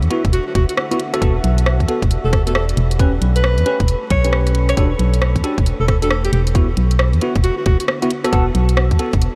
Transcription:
Already playing: ambient pad D4 A4 E5 F#5
0.02 fm bass E2, closed hi-hat
0.10 tine electric piano B3 E4 F#4, closed hi-hat
0.25 fm bass E1, kick, closed hi-hat
0.33 alto saxophone F#4, closed hi-hat
0.47 alto saxophone F#4
0.55 fm bass E1, alto saxophone F#4, kick, closed hi-hat
0.69 alto saxophone F#4, closed hi-hat
0.77 cross-stick
0.91 tine electric piano B3 E4 F#4, closed hi-hat
0.99 ambient pad G4, closed hi-hat
1.07 ambient pad D5
1.13 tine electric piano B3 F#4 A4, cross-stick, closed hi-hat
1.22 fm bass E1, tine electric piano B3 F#4 A4, kick, closed hi-hat
1.44 fm bass B1, ambient pad A5, closed hi-hat
1.58 closed hi-hat
1.66 cross-stick
1.80 fm bass E2, ambient pad B5, kick, closed hi-hat
1.88 tine electric piano B3 F#4 A4, closed hi-hat
2.02 fm bass E1, kick, closed hi-hat
2.11 closed hi-hat
2.25 fm bass E1, alto saxophone A4
2.33 alto saxophone A4, kick, cross-stick, closed hi-hat
2.47 tine electric piano B3 F#4 A4, alto saxophone A4, closed hi-hat
2.55 alto saxophone A4, cross-stick
2.69 closed hi-hat
2.77 fm bass E1, ambient pad A4, closed hi-hat
2.91 closed hi-hat
2.99 tine electric piano C#4 G4 B4, kick, closed hi-hat
3.06 ambient pad C#6
3.15 ambient pad E5
3.21 fm bass B1, closed hi-hat
3.36 alto saxophone B4, closed hi-hat
3.44 cross-stick
3.58 fm bass E2, closed hi-hat
3.66 tine electric piano C#4 G4 B4, closed hi-hat
3.80 fm bass E1, kick, closed hi-hat
3.88 closed hi-hat
4.10 fm bass B1, alto saxophone C#5, kick, closed hi-hat
4.24 tine electric piano C#4 G4 B4, closed hi-hat
4.33 cross-stick
4.47 cross-stick, closed hi-hat
4.55 closed hi-hat
4.69 alto saxophone C#5, cross-stick, closed hi-hat
4.77 fm bass E1, tine electric piano D4 F#4 G4 A4, ambient pad E4, alto saxophone C#5, kick, closed hi-hat
4.99 fm bass B1, closed hi-hat
5.14 ambient pad B4, closed hi-hat
5.22 cross-stick
5.36 fm bass E2, kick, closed hi-hat
5.44 tine electric piano D4 F#4 G4 A4, closed hi-hat
5.58 fm bass E1, kick, closed hi-hat
5.66 closed hi-hat
5.80 fm bass E1, alto saxophone A4
5.88 alto saxophone A4, kick, cross-stick, closed hi-hat
6.02 tine electric piano D4 F#4 G4 A4, alto saxophone A4, closed hi-hat
6.11 alto saxophone A4, cross-stick
6.25 alto saxophone G4, closed hi-hat
6.33 fm bass E1, ambient pad D4, alto saxophone G4, closed hi-hat
6.44 ambient pad E5, closed hi-hat
6.55 tine electric piano B3 E4 F#4, kick, closed hi-hat
6.68 ambient pad A4
6.77 fm bass B1, closed hi-hat
6.91 closed hi-hat
6.99 cross-stick
7.13 fm bass E2, ambient pad F#5, closed hi-hat
7.21 tine electric piano B3 E4 F#4, closed hi-hat
7.36 fm bass E1, kick, closed hi-hat
7.44 alto saxophone F#4, closed hi-hat
7.57 alto saxophone F#4
7.66 fm bass E1, alto saxophone F#4, kick, closed hi-hat
7.80 alto saxophone F#4, closed hi-hat
7.88 cross-stick
8.02 tine electric piano B3 E4 F#4, closed hi-hat
8.10 ambient pad G4, closed hi-hat
8.24 tine electric piano B3 F#4 A4, ambient pad D5, cross-stick, closed hi-hat
8.32 fm bass E1, tine electric piano B3 F#4 A4, kick, closed hi-hat
8.47 ambient pad A5 B5
8.55 fm bass B1, closed hi-hat
8.69 closed hi-hat
8.77 cross-stick
8.91 fm bass E2, kick, closed hi-hat
8.99 tine electric piano B3 F#4 A4, closed hi-hat
9.13 fm bass E1, kick, closed hi-hat
9.22 closed hi-hat

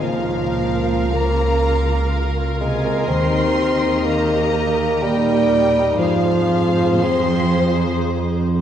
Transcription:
0.01 double bass section C#2, cello section A#2, harp C#3, bassoon F3, viola section F4 A#4, violin section A#4 F5
0.28 harp C#4
0.57 harp A#3
0.85 harp F4
1.12 cello section C#3, bassoon A#3, harp A#4, violin section A#5
1.39 harp F4
1.64 harp A#4
1.88 harp F4
2.12 harp A#3
2.36 harp C#4
2.60 cello section C3, bassoon G#3, harp A#3, violin section G#5
2.85 harp C#4
3.07 double bass section D#2, cello section D#3, harp D#3, bassoon C4, viola section G4, violin section D#5 C6
3.34 harp A#3
3.83 harp G4
4.05 cello section D#3, bassoon A#3, harp A#4, violin section A#5
4.31 harp G4
4.55 harp A#4
4.79 harp G4
5.02 cello section A#2, bassoon G3, harp D#4, violin section G5
5.27 harp A#3
5.50 harp D#4
5.74 harp A#3
5.97 double bass section F2, cello section G#2, harp F3, bassoon F3, viola section G#4, violin section C5 F5
6.23 harp G#3
6.49 harp C4
6.76 harp C5
7.00 cello section F3, bassoon C4, harp G#4, violin section C6
7.25 harp C5
7.49 harp G#4
7.71 harp C5
7.95 harp C4
8.18 harp G#3
8.40 harp C4

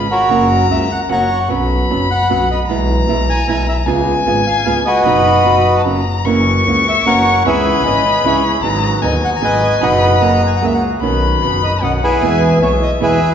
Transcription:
Already playing: double bass G#1, violin B5
0.11 bandoneon F#4 A#4 C#5
0.29 double bass F#1, nylon-string guitar C#3 F#3 A#3 C#4 F#4, violin A#5
0.69 double bass C#2, nylon-string guitar C#3 F#3 A#3 C#4 F#4, bandoneon E5
0.92 bandoneon F#5
1.09 double bass F#1, nylon-string guitar C#3 F#3 A#3 C#4 F#4, bandoneon C#5 F#5 A#5, violin F#5
1.48 double bass B1, nylon-string guitar B2 F#3 B3 C#4 F#4, violin B5
1.90 double bass F#1, nylon-string guitar B2 F#3 B3 C#4 F#4
2.11 bandoneon F#5
2.30 double bass B1, nylon-string guitar B2 F#3 B3 C#4 F#4, bandoneon F#5
2.51 bandoneon D#5
2.68 double bass B1, nylon-string guitar B2 E3 G#3 B3 E4, violin A#5
3.08 double bass B1, nylon-string guitar B2 E3 G#3 B3 E4
3.29 bandoneon G#5
3.47 double bass B1, nylon-string guitar B2 E3 G#3 B3 E4, bandoneon G#5
3.69 bandoneon E5
3.86 double bass C#2, nylon-string guitar C#3 G#3 B3 F4 G#4, violin G#5
4.26 double bass G#1, nylon-string guitar C#3 G#3 B3 F4 G#4
4.47 bandoneon F5
4.65 double bass C#2, nylon-string guitar C#3 G#3 B3 F4 G#4, bandoneon F5
4.85 bandoneon F#4 B4 D#5
5.04 double bass F#1, nylon-string guitar B2 F#3 B3 D#4 F#4, violin B5
5.45 double bass F#1, nylon-string guitar B2 F#3 B3 D#4 F#4
5.78 violin A5
5.85 double bass F#1, nylon-string guitar C#3 F#3 A#3 C#4 F#4, violin A#5
6.24 double bass F#1, nylon-string guitar C#3 E3 A#3 C#4 F#4, bandoneon A#3 E4 F#4, violin C#6
6.66 double bass C#2, nylon-string guitar C#3 E3 A#3 C#4 F#4, bandoneon A#3 E4 F#4
6.89 bandoneon E5
7.05 double bass F#1, nylon-string guitar C#3 E3 A#3 C#4 F#4, bandoneon A#3 E4 F#4 A#4 C#5 F#5
7.45 double bass C#2, nylon-string guitar C#3 E3 B3 C#4 E4, bandoneon B3 C#4 E4 G#4 B4 E5, violin B5
7.85 double bass G#1, nylon-string guitar C#3 E3 B3 C#4 E4, bandoneon B3 C#4 E4 G#4 B4 D#5
8.24 double bass C#2, nylon-string guitar C#3 E3 B3 C#4 E4, bandoneon B3 C#4 E4 G#4 C#5
8.62 double bass G#1, nylon-string guitar D#3 F#3 B3 D#4 G#4, bandoneon G#3 B3 F#4, violin A#5
9.02 double bass D#2, nylon-string guitar D#3 F#3 B3 D#4 G#4, bandoneon G#3 B3 F#4 D#5, violin G#5
9.25 bandoneon F#5
9.36 bandoneon A#5
9.41 double bass G#1, nylon-string guitar D#3 F#3 B3 D#4 G#4, bandoneon G#3 B3 F#4 B4 D#5 G#5
9.81 double bass F#1, nylon-string guitar B2 F#3 B3 D#4 F#4, bandoneon B3 D#4 F#4 B4 D#5 F#5, violin B5
10.20 double bass F#1, nylon-string guitar F#3 A#3 C#4 G#4, bandoneon A#3 F#4 G#4, violin A#5
10.47 bandoneon G#5
10.56 bandoneon F#5
10.61 double bass C#2, nylon-string guitar F#3 A#3 C#4 G#4, bandoneon A#3 F#4 G#4 E5
10.74 bandoneon F#5
11.01 double bass B1, nylon-string guitar B2 D#3 C#4 F#4, bandoneon C#4 D#4 B4, violin B5
11.41 double bass F#1, nylon-string guitar B2 D#3 C#4 F#4, bandoneon C#4 D#4 B4
11.64 bandoneon D#5
11.82 double bass B1, nylon-string guitar B2 D#3 C#4 F#4, bandoneon C#4 D#4 B4 D#5, violin F#5
12.04 bandoneon E4 G#4 B4
12.21 double bass E2, nylon-string guitar B2 E3 G#3 B3 E4, bandoneon B3 E4 G#4, violin G#5
12.61 double bass B1, nylon-string guitar B2 E3 G#3 B3 E4, bandoneon B3 E4 G#4 C#5, violin E5
12.83 bandoneon D#5
13.00 double bass E2, nylon-string guitar B2 E3 G#3 B3 E4, bandoneon B3 E4 G#4 B4 E5

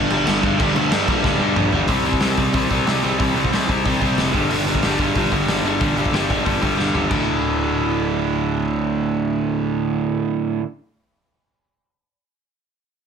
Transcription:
Already playing: overdriven electric guitar D3 G3
0.10 picked electric bass G1, overdriven electric guitar G2 D3 G3, crash
0.27 picked electric bass G1, overdriven electric guitar G2 D3 G3, snare, crash
0.43 picked electric bass G1, overdriven electric guitar G2 D3 G3, kick, crash
0.59 picked electric bass G1, overdriven electric guitar G2 D3 G3, kick, crash
0.76 picked electric bass D2, overdriven electric guitar G2 D3 G3, crash
0.91 picked electric bass G2, overdriven electric guitar G2 D3 G3, snare, crash
1.08 picked electric bass A#1, overdriven electric guitar G2 D3 G3, kick, crash
1.24 picked electric bass D1, overdriven electric guitar G2 D3 G3, kick, snare
1.39 picked electric bass G2, overdriven electric guitar G2 D3 G3
1.56 picked electric bass A#1, overdriven electric guitar G2 D3 G3, mid tom
1.72 picked electric bass G1, overdriven electric guitar G2 D3 G3, floor tom
1.88 picked electric bass C2, overdriven electric guitar C3 G3 C4, kick, open hi-hat
2.05 overdriven electric guitar C3 G3 C4, open hi-hat
2.13 kick
2.20 picked electric bass C2, overdriven electric guitar C3 G3 C4, snare, open hi-hat
2.37 picked electric bass C2, overdriven electric guitar C3 G3 C4, kick, open hi-hat
2.53 picked electric bass C2, overdriven electric guitar C3 G3 C4, kick, open hi-hat
2.71 picked electric bass C2, overdriven electric guitar C3 G3 C4, kick, open hi-hat
2.87 picked electric bass C2, overdriven electric guitar C3 G3 C4, snare, open hi-hat
3.04 picked electric bass C2, overdriven electric guitar C3 G3 C4, open hi-hat
3.19 picked electric bass C2, overdriven electric guitar C3 G3 C4, kick, open hi-hat
3.36 picked electric bass C2, overdriven electric guitar C3 G3 C4, open hi-hat
3.45 kick
3.51 picked electric bass C2, overdriven electric guitar C3 G3 C4, snare, open hi-hat
3.69 picked electric bass C2, overdriven electric guitar C3 G3 C4, kick, open hi-hat
3.85 picked electric bass C2, overdriven electric guitar C3 G3 C4, kick, open hi-hat
4.01 picked electric bass C2, overdriven electric guitar C3 G3 C4, kick, open hi-hat
4.18 picked electric bass F1, overdriven electric guitar C3 G3 C4, snare, open hi-hat
4.34 picked electric bass G1, overdriven electric guitar G2 D3 G3, kick, open hi-hat
4.51 picked electric bass G1, overdriven electric guitar G2 D3 G3, open hi-hat
4.67 overdriven electric guitar G2 D3 G3, open hi-hat
4.75 kick
4.83 picked electric bass G1, overdriven electric guitar G2 D3 G3, snare, open hi-hat
4.98 picked electric bass G1, overdriven electric guitar G2 D3 G3, kick, open hi-hat
5.15 picked electric bass G1, overdriven electric guitar G2 D3 G3, kick, open hi-hat
5.32 picked electric bass G1, overdriven electric guitar G2 D3 G3, kick, open hi-hat
5.47 picked electric bass G1, overdriven electric guitar G2 D3 G3, snare, open hi-hat
5.63 picked electric bass G1, overdriven electric guitar G2 D3 G3, open hi-hat
5.80 picked electric bass G1, overdriven electric guitar G2 D3 G3, kick, open hi-hat
5.96 picked electric bass G1, overdriven electric guitar G2 D3 G3, open hi-hat
6.06 kick
6.12 picked electric bass G1, overdriven electric guitar G2 D3 G3, snare, open hi-hat
6.29 picked electric bass G1, overdriven electric guitar G2 D3 G3, kick, open hi-hat
6.45 picked electric bass G1, overdriven electric guitar G2 D3 G3, kick, open hi-hat
6.61 picked electric bass G1, overdriven electric guitar G2 D3 G3, kick, open hi-hat
6.77 picked electric bass G1, overdriven electric guitar G2 D3 G3, snare
6.93 picked electric bass G1, overdriven electric guitar G2 D3 G3, floor tom
7.08 picked electric bass D1, overdriven electric guitar D2 A2, kick, crash
7.12 overdriven electric guitar D3

